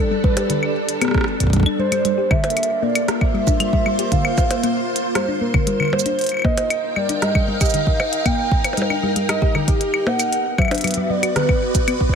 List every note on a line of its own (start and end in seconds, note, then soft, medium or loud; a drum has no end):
0.00 2.05 G3 medium
0.00 3.70 D4 medium
0.00 0.23 A4 loud
0.00 3.47 A4 medium
0.11 0.17 G3 medium
0.24 0.34 G3 medium
0.24 0.72 B4 medium
0.24 kick loud
0.37 0.43 G4 medium
0.37 closed hi-hat medium
0.37 percussion blips medium
0.50 0.60 D3 medium
0.50 closed hi-hat medium
0.63 claves medium
0.89 closed hi-hat medium
1.01 1.08 B3 loud
1.01 cross-stick medium
1.01 closed hi-hat medium
1.01 claves medium
1.05 cross-stick medium
1.08 cross-stick medium
1.11 cross-stick medium
1.14 kick loud
1.14 cross-stick medium
1.18 cross-stick medium
1.21 cross-stick loud
1.24 cross-stick loud
1.40 kick medium
1.40 closed hi-hat medium
1.44 kick medium
1.47 kick medium
1.50 kick medium
1.50 closed hi-hat medium
1.53 1.59 G3 medium
1.53 kick medium
1.56 kick medium
1.60 kick loud
1.63 1.76 D4 medium
1.63 kick loud
1.63 claves medium
1.79 1.91 G3 medium
1.79 2.32 C5 loud
1.92 1.98 G3 medium
1.92 closed hi-hat medium
1.92 claves medium
2.05 2.15 G3 medium
2.05 7.35 A#3 medium
2.05 closed hi-hat medium
2.18 2.24 G4 medium
2.31 2.41 D3 medium
2.31 2.84 E5 loud
2.31 kick loud
2.31 percussion blips medium
2.31 claves medium
2.39 6.98 F4 medium
2.44 closed hi-hat soft
2.44 percussion blips medium
2.50 closed hi-hat soft
2.57 closed hi-hat medium
2.57 claves soft
2.63 closed hi-hat medium
2.71 7.57 C5 loud
2.83 2.89 A#3 loud
2.83 3.10 D5 loud
2.95 closed hi-hat medium
2.95 claves medium
3.08 4.13 E5 loud
3.08 cross-stick loud
3.08 closed hi-hat medium
3.21 kick loud
3.21 claves medium
3.34 3.40 G3 medium
3.47 3.57 D4 medium
3.47 kick loud
3.47 shaker medium
3.60 3.72 G3 medium
3.60 closed hi-hat medium
3.60 claves medium
3.73 3.79 G3 medium
3.73 kick medium
3.86 3.96 G3 medium
3.86 claves soft
3.99 4.05 G4 medium
3.99 closed hi-hat medium
4.12 4.22 D3 medium
4.12 4.89 F5 loud
4.12 kick medium
4.12 closed hi-hat medium
4.25 claves medium
4.38 kick loud
4.38 percussion blips medium
4.38 shaker medium
4.51 closed hi-hat medium
4.51 percussion blips medium
4.64 4.70 A#3 loud
4.64 closed hi-hat medium
4.96 closed hi-hat medium
5.15 5.21 G3 medium
5.15 5.27 C5 medium
5.15 cross-stick loud
5.15 closed hi-hat medium
5.15 claves soft
5.28 5.38 D4 medium
5.41 5.51 A#3 medium
5.41 5.94 A#4 medium
5.54 5.66 D3 medium
5.54 kick loud
5.54 claves medium
5.67 5.77 G3 medium
5.67 closed hi-hat medium
5.80 5.90 D3 medium
5.80 claves medium
5.83 claves soft
5.85 claves soft
5.88 claves soft
5.90 6.05 G3 medium
5.90 6.44 C5 loud
5.90 percussion blips medium
5.90 claves soft
5.99 shaker medium
6.06 6.16 D4 medium
6.06 closed hi-hat medium
6.19 10.32 D#4 medium
6.19 closed hi-hat soft
6.21 closed hi-hat soft
6.24 closed hi-hat soft
6.26 closed hi-hat soft
6.29 closed hi-hat soft
6.29 claves soft
6.33 10.32 G5 medium
6.33 claves soft
6.37 claves soft
6.39 10.32 A#4 medium
6.39 claves soft
6.42 6.51 A#3 loud
6.42 6.98 D#5 loud
6.42 kick loud
6.42 percussion blips medium
6.42 claves soft
6.55 10.32 F5 medium
6.55 closed hi-hat medium
6.55 percussion blips medium
6.70 closed hi-hat medium
6.70 claves medium
6.96 7.02 G3 medium
6.96 7.24 D5 loud
6.96 claves medium
7.09 7.19 D4 medium
7.09 closed hi-hat medium
7.22 7.32 G3 loud
7.22 8.27 D#5 loud
7.22 cross-stick loud
7.22 closed hi-hat soft
7.35 7.41 G3 medium
7.35 kick loud
7.35 claves medium
7.48 7.58 G3 medium
7.61 7.67 G4 medium
7.61 kick loud
7.61 closed hi-hat medium
7.61 claves medium
7.61 shaker medium
7.65 shaker medium
7.70 shaker medium
7.74 7.84 D3 medium
7.74 closed hi-hat medium
7.87 kick medium
8.00 percussion blips medium
8.00 claves medium
8.13 closed hi-hat medium
8.26 8.32 A#3 loud
8.26 9.03 G5 loud
8.26 kick medium
8.26 closed hi-hat soft
8.26 claves medium
8.51 kick loud
8.64 closed hi-hat medium
8.64 percussion blips soft
8.64 claves medium
8.73 percussion blips medium
8.77 8.83 G3 medium
8.77 closed hi-hat soft
8.82 percussion blips medium
8.90 9.00 D4 medium
8.90 claves medium
9.03 9.13 G3 loud
9.16 9.22 G3 medium
9.16 closed hi-hat medium
9.29 9.39 G3 medium
9.29 9.56 D#5 loud
9.29 cross-stick loud
9.29 closed hi-hat medium
9.29 claves medium
9.42 9.48 G4 medium
9.42 kick loud
9.55 9.65 D3 medium
9.55 10.08 G4 loud
9.55 claves medium
9.68 kick loud
9.68 closed hi-hat medium
9.81 closed hi-hat medium
9.94 claves medium
10.07 10.13 A#3 loud
10.07 10.60 F#5 loud
10.07 percussion blips loud
10.20 closed hi-hat medium
10.20 claves medium
10.20 shaker medium
10.32 12.15 B3 medium
10.32 closed hi-hat medium
10.46 12.15 F#4 medium
10.58 10.65 F#3 medium
10.58 12.15 D5 loud
10.58 11.12 E5 loud
10.58 kick loud
10.58 percussion blips medium
10.58 claves medium
10.62 claves medium
10.65 12.15 B4 medium
10.65 claves medium
10.68 10.81 D4 medium
10.68 closed hi-hat soft
10.68 percussion blips loud
10.68 claves soft
10.75 closed hi-hat soft
10.78 closed hi-hat soft
10.81 10.94 F#3 loud
10.81 closed hi-hat soft
10.84 closed hi-hat medium
10.84 claves medium
10.87 closed hi-hat soft
10.91 closed hi-hat medium
10.94 11.03 F#3 medium
10.94 closed hi-hat medium
11.10 11.20 F#3 medium
11.10 11.35 D5 loud
11.23 11.29 F#4 medium
11.23 closed hi-hat medium
11.23 claves medium
11.36 11.46 D3 medium
11.36 12.15 B4 loud
11.36 cross-stick loud
11.36 closed hi-hat soft
11.49 kick loud
11.49 claves medium
11.75 kick loud
11.75 closed hi-hat medium
11.75 shaker medium
11.88 11.94 B3 loud
11.88 closed hi-hat medium
11.88 claves medium
12.01 kick medium
12.09 kick medium